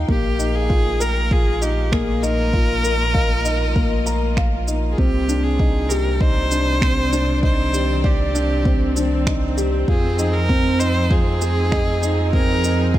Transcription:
0.00 0.10 D#4 loud
0.00 0.10 F4 medium
0.00 0.10 G4 medium
0.00 1.92 F5 medium
0.00 1.53 G5 medium
0.08 4.95 A#1 medium
0.08 4.98 A#2 medium
0.08 0.37 A#3 medium
0.08 0.57 G4 loud
0.08 kick loud
0.38 6.93 A#3 medium
0.38 0.56 D#4 medium
0.38 shaker medium
0.55 1.03 G#4 loud
0.70 0.87 F4 medium
0.70 kick medium
1.00 1.29 A#4 loud
1.00 1.34 A#4 loud
1.00 shaker medium
1.31 1.48 F4 medium
1.31 1.64 G#4 loud
1.31 kick loud
1.48 6.81 F4 medium
1.61 1.90 D#4 medium
1.61 1.94 G4 loud
1.61 shaker medium
1.92 2.21 A#3 loud
1.92 2.25 G#4 loud
1.92 finger snap medium
1.92 kick loud
2.19 2.52 D#4 loud
2.19 4.98 D#5 medium
2.23 4.68 A#4 loud
2.23 shaker medium
2.53 2.71 F4 medium
2.53 kick medium
2.83 3.13 A#4 medium
2.83 shaker medium
3.14 3.43 F5 loud
3.14 kick loud
3.45 3.74 D#4 loud
3.45 shaker medium
3.75 4.04 A#3 medium
3.75 kick loud
4.06 4.35 A#5 medium
4.06 shaker medium
4.37 4.66 F5 loud
4.37 finger snap medium
4.37 kick loud
4.67 4.96 D#4 medium
4.67 shaker medium
4.91 4.99 G#4 medium
4.97 9.85 C2 medium
4.97 9.88 C3 medium
4.97 5.27 C4 medium
4.97 5.45 G4 loud
4.97 kick loud
5.29 5.46 D4 medium
5.29 shaker medium
5.44 5.91 G#4 loud
5.59 12.99 C4 medium
5.59 5.77 D#4 medium
5.59 kick loud
5.90 6.19 G4 loud
5.90 6.22 A#4 loud
5.90 shaker medium
6.02 9.88 D5 medium
6.20 6.38 D#4 medium
6.20 7.43 C5 loud
6.20 kick loud
6.44 10.69 D#3 medium
6.51 6.80 D4 medium
6.51 shaker medium
6.82 7.11 C4 loud
6.82 finger snap medium
6.82 kick loud
7.12 7.41 D4 loud
7.12 shaker medium
7.43 7.60 D#4 medium
7.43 8.07 C5 loud
7.43 kick loud
7.73 8.02 G4 medium
7.73 shaker medium
8.04 9.27 G4 medium
8.04 8.33 D5 loud
8.04 kick loud
8.35 8.64 D4 loud
8.35 shaker medium
8.65 8.94 C4 medium
8.65 kick loud
8.96 9.14 D4 medium
8.96 shaker medium
9.27 9.44 D#4 medium
9.27 finger snap medium
9.27 kick loud
9.57 9.86 G4 loud
9.57 shaker medium
9.88 12.99 F2 medium
9.88 12.99 F3 medium
9.88 10.05 F4 medium
9.88 10.35 G#4 loud
9.88 kick loud
10.18 10.48 D#4 medium
10.18 shaker medium
10.34 10.81 A#4 loud
10.49 10.78 C4 loud
10.49 kick loud
10.79 11.09 D#4 medium
10.79 11.11 C5 loud
10.79 shaker medium
11.10 11.28 F4 medium
11.10 12.32 G#4 loud
11.10 kick loud
11.19 12.99 D#4 medium
11.24 12.99 G#4 medium
11.41 11.70 G#4 medium
11.41 shaker medium
11.71 12.01 D#5 loud
11.71 finger snap medium
11.71 kick loud
12.03 12.32 D#4 loud
12.03 shaker medium
12.33 12.62 C4 medium
12.33 12.90 A#4 loud
12.33 kick loud
12.64 12.81 D#4 medium
12.64 shaker medium
12.93 12.99 F4 medium
12.93 12.99 G#4 medium
12.93 kick loud

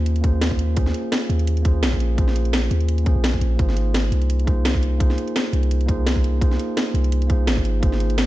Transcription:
0.00 0.93 D#2 medium
0.00 0.21 A#3 medium
0.00 0.23 C#4 medium
0.00 0.24 F4 medium
0.00 0.25 G#4 medium
0.00 0.26 C5 medium
0.06 closed hi-hat loud
0.16 closed hi-hat soft
0.21 0.73 A#3 medium
0.21 0.74 C#4 medium
0.21 0.75 F4 medium
0.21 0.75 G#4 medium
0.21 kick loud
0.21 closed hi-hat medium
0.26 0.76 C5 medium
0.41 snare loud
0.41 closed hi-hat medium
0.51 kick medium
0.59 closed hi-hat medium
0.74 1.61 A#3 medium
0.74 1.62 C#4 medium
0.74 1.63 F4 medium
0.74 1.64 G#4 medium
0.74 kick loud
0.74 closed hi-hat loud
0.79 1.64 C5 medium
0.86 snare soft
0.94 closed hi-hat medium
1.12 snare loud
1.12 closed hi-hat medium
1.30 1.84 D#2 medium
1.30 closed hi-hat medium
1.39 closed hi-hat soft
1.47 closed hi-hat medium
1.57 closed hi-hat soft
1.62 2.14 A#3 medium
1.62 2.15 C#4 medium
1.62 2.16 F4 medium
1.62 2.17 G#4 medium
1.62 kick loud
1.62 closed hi-hat medium
1.67 2.17 C5 medium
1.82 2.69 A#1 medium
1.82 snare loud
1.82 closed hi-hat medium
1.92 kick medium
2.00 closed hi-hat medium
2.16 3.03 A#3 medium
2.16 3.04 C#4 medium
2.16 3.04 F4 medium
2.16 3.05 G#4 medium
2.16 kick loud
2.16 closed hi-hat medium
2.20 3.05 C5 medium
2.28 snare soft
2.36 closed hi-hat medium
2.45 closed hi-hat soft
2.53 snare loud
2.53 closed hi-hat medium
2.71 3.14 D#2 medium
2.71 closed hi-hat medium
2.80 closed hi-hat soft
2.88 closed hi-hat medium
2.98 closed hi-hat soft
3.04 3.55 A#3 medium
3.04 3.56 C#4 medium
3.04 3.57 F4 medium
3.04 3.58 G#4 medium
3.04 kick loud
3.04 closed hi-hat medium
3.08 3.58 C5 medium
3.16 3.40 A#1 medium
3.24 snare loud
3.24 closed hi-hat medium
3.33 kick medium
3.41 3.57 A#1 loud
3.41 closed hi-hat medium
3.57 4.11 G#1 medium
3.57 4.43 A#3 medium
3.57 4.45 D#4 medium
3.57 4.45 F4 medium
3.57 4.46 G#4 medium
3.57 kick loud
3.57 closed hi-hat medium
3.62 4.47 C5 medium
3.69 snare soft
3.77 closed hi-hat medium
3.94 snare loud
3.94 closed hi-hat medium
4.12 5.17 C2 medium
4.12 closed hi-hat medium
4.22 closed hi-hat soft
4.30 closed hi-hat medium
4.39 closed hi-hat soft
4.45 4.96 A#3 medium
4.45 4.98 D#4 medium
4.45 4.98 F4 medium
4.45 4.99 G#4 medium
4.45 kick loud
4.45 closed hi-hat medium
4.50 4.99 C5 medium
4.65 snare loud
4.65 closed hi-hat medium
4.74 kick medium
4.83 closed hi-hat medium
4.97 5.85 A#3 medium
4.97 5.86 D#4 medium
4.97 5.86 F4 medium
4.97 5.87 G#4 medium
4.97 kick loud
4.97 closed hi-hat medium
5.02 5.88 C5 medium
5.10 snare soft
5.18 closed hi-hat medium
5.27 closed hi-hat soft
5.36 snare loud
5.36 closed hi-hat medium
5.53 6.58 C2 medium
5.53 closed hi-hat medium
5.63 closed hi-hat soft
5.71 closed hi-hat medium
5.81 closed hi-hat soft
5.86 6.38 A#3 medium
5.86 6.39 D#4 medium
5.86 6.39 F4 medium
5.86 6.40 G#4 medium
5.86 kick loud
5.86 closed hi-hat medium
5.91 6.41 C5 medium
6.07 snare loud
6.07 closed hi-hat medium
6.16 kick medium
6.24 closed hi-hat medium
6.39 7.26 A#3 medium
6.39 7.27 D#4 medium
6.39 7.28 F4 medium
6.39 7.28 G#4 medium
6.39 kick loud
6.39 closed hi-hat medium
6.44 7.29 C5 medium
6.51 snare soft
6.59 closed hi-hat medium
6.77 snare loud
6.77 closed hi-hat medium
6.94 7.49 C2 medium
6.94 closed hi-hat medium
7.04 closed hi-hat soft
7.12 closed hi-hat medium
7.22 closed hi-hat soft
7.27 7.79 A#3 medium
7.27 7.80 D#4 medium
7.27 7.81 F4 medium
7.27 7.81 G#4 medium
7.27 kick loud
7.27 closed hi-hat medium
7.32 7.82 C5 medium
7.47 8.26 G#1 medium
7.47 snare loud
7.47 closed hi-hat medium
7.57 kick medium
7.65 closed hi-hat medium
7.80 8.26 A#3 medium
7.80 8.26 D#4 medium
7.80 8.26 F4 medium
7.80 8.26 G#4 medium
7.80 kick loud
7.80 closed hi-hat medium
7.85 8.26 C5 medium
7.92 snare soft
8.00 closed hi-hat medium
8.10 closed hi-hat soft
8.18 snare loud
8.18 closed hi-hat medium

